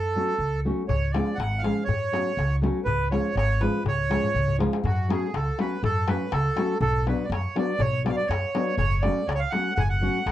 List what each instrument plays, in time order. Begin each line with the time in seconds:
Already playing: upright bass F#2, accordion A4
0.16 nylon-string guitar F#3 A3 C#4 F#4
0.38 upright bass C#2
0.65 nylon-string guitar F#3 A3 C#4 F#4
0.88 upright bass C#2, accordion C#5, darbuka dum
1.11 nylon-string guitar F3 G#3, accordion D5, darbuka tek
1.15 nylon-string guitar C#4 F4
1.27 darbuka tek
1.35 upright bass G#1, accordion F#5
1.40 darbuka tek
1.53 darbuka tek
1.59 accordion F5
1.63 nylon-string guitar F3 G#3 C#4 F4, darbuka tek
1.77 darbuka tek
1.84 upright bass F#2, accordion C#5
1.89 darbuka dum
2.12 nylon-string guitar F#3 A3 C#4 F#4, darbuka tek
2.26 darbuka tek
2.37 upright bass C#2, darbuka tek
2.51 darbuka tek
2.62 nylon-string guitar F#3 A3 C#4 F#4, darbuka tek
2.75 darbuka tek
2.85 upright bass C#2, accordion B4, darbuka dum
3.11 nylon-string guitar F3 G#3 C#4 F4, accordion C#5, darbuka tek
3.35 upright bass G#1, accordion C#5, darbuka tek
3.51 darbuka tek
3.60 nylon-string guitar F3 G#3 C#4 F4, accordion B4, darbuka tek
3.74 darbuka tek
3.84 upright bass C#2, accordion C#5, darbuka dum
3.99 darbuka tek
4.09 nylon-string guitar F3 G#3 C#4 F4, darbuka tek
4.24 darbuka dum
4.34 upright bass C#2, darbuka dum
4.48 darbuka dum
4.59 nylon-string guitar F3 G#3 C#4 F4, darbuka tek
4.73 darbuka tek
4.84 upright bass F#2, accordion F#4, darbuka dum
4.97 darbuka tek
5.08 nylon-string guitar F#3 A3 C#4 F#4, accordion G#4, darbuka tek
5.34 upright bass C#2, accordion A4, darbuka tek
5.58 nylon-string guitar F#3 A3 C#4 F#4, accordion B4, darbuka tek
5.83 upright bass F#2, accordion A4, darbuka dum
5.96 darbuka tek
6.07 nylon-string guitar F#3 A3 C#4 F#4, accordion B4, darbuka tek
6.32 upright bass C#2, accordion A4, darbuka tek
6.56 nylon-string guitar F#3 A3 C#4 F#4, darbuka tek
6.81 upright bass B1, accordion A4, darbuka dum
6.95 darbuka tek
7.06 nylon-string guitar F#3 B3 D4 F#4, accordion B4, darbuka tek
7.24 accordion D5
7.30 upright bass F#2, accordion C#5, darbuka tek
7.56 nylon-string guitar F#3 B3 D4 F#4, accordion D5, darbuka tek
7.79 upright bass B1, accordion C#5, darbuka dum
7.93 darbuka tek
8.04 nylon-string guitar F#3 B3 D4 F#4, accordion D5, darbuka tek
8.09 accordion F5
8.16 accordion D5, darbuka tek
8.27 upright bass F#2, accordion C#5, darbuka tek
8.43 darbuka tek
8.55 nylon-string guitar F#3 B3 D4 F#4, darbuka tek
8.77 upright bass F#1, accordion C#5, darbuka dum
8.91 darbuka tek
9.02 nylon-string guitar F#3 A3 C#4 F#4, accordion D5, darbuka tek
9.27 upright bass C#2, accordion C#5 D5, darbuka tek
9.35 accordion C#5
9.39 accordion F5
9.50 nylon-string guitar F#3 A3 C#4, accordion F#5, darbuka tek
9.55 nylon-string guitar F#4
9.75 upright bass F#1, accordion F#5, darbuka dum
9.80 accordion G#5
9.89 accordion F#5, darbuka tek
10.01 nylon-string guitar F#3 A3 C#4 F#4
10.26 upright bass C#2, darbuka tek